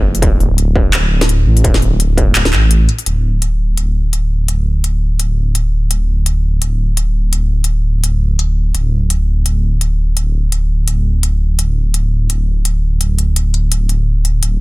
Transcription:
0.00 0.21 F1 loud
0.15 open hi-hat medium
0.22 1.10 D1 loud
0.22 kick loud
0.22 closed hi-hat medium
0.40 open hi-hat soft
0.58 closed hi-hat medium
0.76 kick medium
0.94 clap loud
0.94 closed hi-hat medium
1.11 1.46 D1 medium
1.21 snare medium
1.21 open hi-hat soft
1.29 closed hi-hat medium
1.47 1.63 A1 medium
1.57 open hi-hat medium
1.64 2.55 D1 loud
1.64 kick loud
1.64 closed hi-hat medium
1.74 snare medium
1.82 open hi-hat soft
2.00 closed hi-hat medium
2.17 kick medium
2.17 closed hi-hat soft
2.35 clap loud
2.35 closed hi-hat medium
2.45 snare medium
2.53 2.88 A1 medium
2.53 clap medium
2.53 open hi-hat soft
2.71 closed hi-hat medium
2.89 closed hi-hat soft
2.99 open hi-hat medium
3.06 8.73 D1 medium
3.06 closed hi-hat medium
3.42 closed hi-hat medium
3.77 closed hi-hat medium
4.13 closed hi-hat medium
4.48 closed hi-hat medium
4.84 closed hi-hat medium
5.20 closed hi-hat medium
5.55 closed hi-hat medium
5.91 closed hi-hat medium
6.26 closed hi-hat medium
6.62 closed hi-hat medium
6.97 closed hi-hat medium
7.33 closed hi-hat medium
7.64 closed hi-hat medium
8.04 closed hi-hat medium
8.39 closed hi-hat medium
8.75 14.41 D1 medium
8.75 closed hi-hat medium
9.10 closed hi-hat medium
9.46 closed hi-hat medium
9.81 closed hi-hat medium
10.17 closed hi-hat medium
10.52 closed hi-hat medium
10.88 closed hi-hat medium
11.23 closed hi-hat medium
11.59 closed hi-hat medium
11.94 closed hi-hat medium
12.30 closed hi-hat medium
12.65 closed hi-hat medium
13.01 closed hi-hat medium
13.18 closed hi-hat soft
13.36 closed hi-hat medium
13.54 closed hi-hat soft
13.72 closed hi-hat medium
13.89 closed hi-hat soft
14.25 closed hi-hat soft
14.42 14.60 D1 loud
14.42 closed hi-hat medium

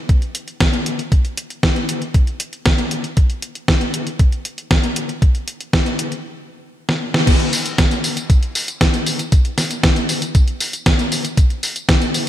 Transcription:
0.09 kick loud
0.09 closed hi-hat medium
0.22 closed hi-hat soft
0.35 closed hi-hat medium
0.48 closed hi-hat soft
0.60 kick loud
0.60 snare loud
0.60 closed hi-hat medium
0.73 closed hi-hat soft
0.86 closed hi-hat medium
0.99 closed hi-hat soft
1.12 kick loud
1.12 closed hi-hat medium
1.25 closed hi-hat soft
1.37 closed hi-hat medium
1.50 closed hi-hat soft
1.63 kick loud
1.63 snare loud
1.63 closed hi-hat medium
1.76 closed hi-hat soft
1.89 closed hi-hat medium
2.02 closed hi-hat soft
2.14 kick loud
2.14 closed hi-hat medium
2.27 closed hi-hat soft
2.40 closed hi-hat medium
2.53 closed hi-hat soft
2.66 kick loud
2.66 snare loud
2.66 closed hi-hat medium
2.78 closed hi-hat soft
2.91 closed hi-hat medium
3.04 closed hi-hat soft
3.17 kick loud
3.17 closed hi-hat medium
3.30 closed hi-hat soft
3.42 closed hi-hat medium
3.55 closed hi-hat soft
3.68 kick medium
3.68 snare loud
3.68 closed hi-hat medium
3.81 closed hi-hat soft
3.94 closed hi-hat medium
4.07 closed hi-hat soft
4.19 kick loud
4.19 closed hi-hat medium
4.32 closed hi-hat soft
4.45 closed hi-hat medium
4.58 closed hi-hat soft
4.71 kick loud
4.71 snare loud
4.71 closed hi-hat medium
4.84 closed hi-hat soft
4.96 closed hi-hat medium
5.09 closed hi-hat soft
5.22 kick loud
5.22 closed hi-hat medium
5.35 closed hi-hat soft
5.48 closed hi-hat medium
5.61 closed hi-hat soft
5.73 kick loud
5.73 snare loud
5.73 closed hi-hat medium
5.86 closed hi-hat soft
5.99 closed hi-hat medium
6.12 closed hi-hat soft
6.89 snare medium
7.14 snare loud
7.27 kick loud
7.27 closed hi-hat medium
7.27 crash loud
7.27 tambourine soft
7.40 closed hi-hat soft
7.53 open hi-hat loud
7.53 tambourine medium
7.66 closed hi-hat medium
7.66 tambourine soft
7.78 kick loud
7.78 snare loud
7.78 closed hi-hat medium
7.78 tambourine soft
7.91 closed hi-hat soft
7.91 tambourine soft
8.04 open hi-hat medium
8.04 tambourine medium
8.17 closed hi-hat medium
8.17 tambourine soft
8.30 kick loud
8.30 closed hi-hat medium
8.30 tambourine soft
8.43 closed hi-hat soft
8.55 open hi-hat loud
8.55 tambourine medium
8.68 closed hi-hat medium
8.68 tambourine soft
8.81 kick loud
8.81 snare loud
8.81 closed hi-hat medium
8.81 tambourine soft
8.94 closed hi-hat soft
8.94 tambourine soft
9.06 open hi-hat loud
9.06 tambourine medium
9.19 closed hi-hat medium
9.19 tambourine soft
9.32 kick loud
9.32 closed hi-hat medium
9.32 tambourine soft
9.45 closed hi-hat soft
9.58 snare medium
9.58 open hi-hat loud
9.58 tambourine medium
9.71 closed hi-hat medium
9.71 tambourine soft
9.83 kick loud
9.83 snare loud
9.83 closed hi-hat medium
9.83 tambourine soft
9.96 closed hi-hat soft
9.96 tambourine soft
10.09 open hi-hat medium
10.09 tambourine medium
10.22 closed hi-hat medium
10.22 tambourine soft
10.35 kick loud
10.35 closed hi-hat medium
10.35 tambourine soft
10.48 closed hi-hat soft
10.61 open hi-hat loud
10.61 tambourine medium
10.73 closed hi-hat medium
10.73 tambourine soft
10.86 kick loud
10.86 snare loud
10.86 closed hi-hat medium
10.86 tambourine soft
10.99 closed hi-hat soft
10.99 tambourine soft
11.12 open hi-hat medium
11.12 tambourine medium
11.25 closed hi-hat medium
11.25 tambourine soft
11.37 kick loud
11.37 closed hi-hat medium
11.37 tambourine soft
11.50 closed hi-hat soft
11.63 open hi-hat loud
11.63 tambourine medium
11.76 closed hi-hat medium
11.76 tambourine soft
11.89 kick loud
11.89 snare loud
11.89 closed hi-hat medium
11.89 tambourine soft
12.02 closed hi-hat soft
12.02 tambourine soft
12.14 open hi-hat medium
12.14 tambourine medium

